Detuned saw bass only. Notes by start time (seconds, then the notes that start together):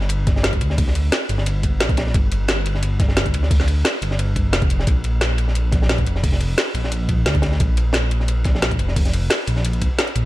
Already playing: G1
0.61 D2
1.29 G1
1.80 A#1
2.14 G1
3.34 D2
4.02 G1
4.53 F1
4.87 A#1
6.06 F1
6.74 A#1
7.26 D2
7.60 A#1
8.79 F1
9.47 A#1
10.16 A#1